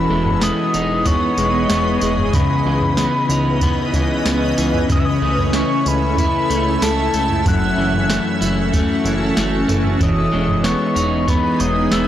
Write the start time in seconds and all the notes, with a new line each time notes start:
Already playing: E3 B3 G#4 D#5 B5
0.10 E1 G#3
0.26 floor tom
0.41 B3 D#6, snare, tambourine
0.74 E1 D#4, tambourine
1.06 B3 C#6, kick, floor tom, tambourine
1.38 E1 G#3, tambourine
1.70 E1 B3, snare, tambourine
2.01 E1 G#3, tambourine
2.18 floor tom
2.33 C#2 C#3 E3 C#4 B4 D#5 B5, kick, floor tom, tambourine
2.66 C#2 E3
2.81 floor tom
2.97 B3, snare, tambourine
3.29 C#2 D#4, tambourine
3.61 B3, kick, floor tom, tambourine
3.94 C#2 E3, kick, tambourine
4.26 C#2 B3, snare, tambourine
4.58 C#2 E3, tambourine
4.74 floor tom
4.90 C#2 C#3 E4 A4 E5 D#6, kick, floor tom, tambourine
4.99 E6
5.05 D#6
5.22 C#2 A3
5.38 floor tom
5.53 E4 C#6, snare, tambourine
5.86 C#2 B5, tambourine
6.18 E4, kick, floor tom, tambourine
6.50 C#2 A3, tambourine
6.82 C#2 E4 A5, snare, tambourine
7.14 C#2 A3, tambourine
7.30 floor tom
7.45 F#1 F#2 C#4 F#4 A4 F#6, kick, floor tom, tambourine
7.78 F#1 E3
7.94 floor tom
8.09 A3, snare, tambourine
8.41 F#1 E4, tambourine
8.73 A3, kick, floor tom, tambourine
9.05 F#1 E3, tambourine
9.37 F#1 A3, snare, tambourine
9.68 F#1 E3, floor tom, tambourine
9.85 floor tom
10.00 E1 E3 B3 D#4 G#4 C#5 D#6, kick, floor tom, tambourine
10.32 E1 G#3
10.48 floor tom
10.63 B3 B4 C#6, snare, tambourine
10.86 D#5
10.96 E1 D#4, tambourine
11.28 B3 B5, kick, floor tom, tambourine
11.60 E1 G#3 C#5 D#6, tambourine
11.92 E1 B3 E6, snare, tambourine